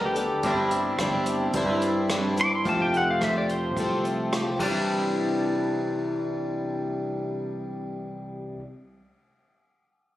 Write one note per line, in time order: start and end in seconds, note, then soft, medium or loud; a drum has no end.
0.00 0.29 D2 medium
0.00 0.16 G3 medium
0.00 0.44 G3 medium
0.00 0.17 B3 medium
0.00 0.43 B3 medium
0.00 0.15 D4 medium
0.00 0.44 D4 medium
0.00 0.14 A4 medium
0.00 0.44 A4 medium
0.05 0.17 G4 medium
0.15 0.44 B3 soft
0.15 0.44 D4 soft
0.15 1.80 G4 medium
0.15 0.44 A4 medium
0.15 closed hi-hat medium
0.43 0.92 G1 medium
0.43 0.72 G3 medium
0.43 0.72 C4 medium
0.43 0.72 D4 medium
0.43 0.70 E4 medium
0.43 kick medium
0.43 closed hi-hat medium
0.71 1.01 D4 soft
0.71 0.99 E4 soft
0.71 closed hi-hat medium
0.75 0.99 C4 soft
0.98 1.47 G1 medium
0.98 1.54 G3 medium
0.98 1.55 C4 medium
0.98 1.55 D4 medium
0.98 kick medium
0.98 cross-stick medium
0.98 closed hi-hat medium
1.03 1.56 E4 medium
1.26 closed hi-hat medium
1.53 2.67 G2 medium
1.53 2.10 G3 medium
1.53 2.11 C4 medium
1.53 2.11 D4 medium
1.53 2.11 E4 medium
1.53 kick medium
1.53 closed hi-hat medium
1.81 closed hi-hat medium
2.09 2.38 G3 medium
2.09 2.38 C4 medium
2.09 2.37 D4 medium
2.09 cross-stick loud
2.09 closed hi-hat medium
2.14 2.35 E4 medium
2.37 2.64 C4 soft
2.37 2.65 D4 soft
2.37 2.65 E4 soft
2.37 closed hi-hat medium
2.41 2.53 D6 loud
2.55 2.67 C6 medium
2.64 3.14 F1 medium
2.64 2.93 F3 medium
2.64 2.93 A3 medium
2.64 2.93 C4 medium
2.64 2.93 G4 medium
2.64 kick loud
2.64 closed hi-hat medium
2.69 2.81 A5 medium
2.82 2.94 G5 medium
2.94 3.20 A3 soft
2.94 3.22 C4 soft
2.94 3.22 G4 soft
2.94 3.09 F#5 medium
2.94 closed hi-hat soft
3.10 3.22 F5 medium
3.21 3.77 F1 medium
3.21 3.76 F3 soft
3.21 3.77 A3 medium
3.21 3.78 C4 medium
3.21 3.78 G4 medium
3.21 3.36 E5 medium
3.21 kick medium
3.21 cross-stick loud
3.21 closed hi-hat medium
3.38 3.50 D5 medium
3.49 4.04 C5 medium
3.49 closed hi-hat medium
3.77 4.49 C2 medium
3.77 4.32 F3 medium
3.77 4.33 A3 medium
3.77 4.34 C4 medium
3.77 kick medium
3.77 closed hi-hat medium
3.81 4.34 G4 medium
4.05 closed hi-hat medium
4.33 4.60 F3 medium
4.33 4.61 A3 medium
4.33 4.61 C4 medium
4.33 4.62 G4 medium
4.33 cross-stick loud
4.33 closed hi-hat medium
4.57 8.55 C2 medium
4.57 8.57 C3 medium
4.57 8.59 E3 medium
4.57 kick medium
4.57 ride medium
4.63 8.60 G3 medium
4.63 8.62 D4 medium
4.63 8.60 G4 medium
4.69 8.63 E4 medium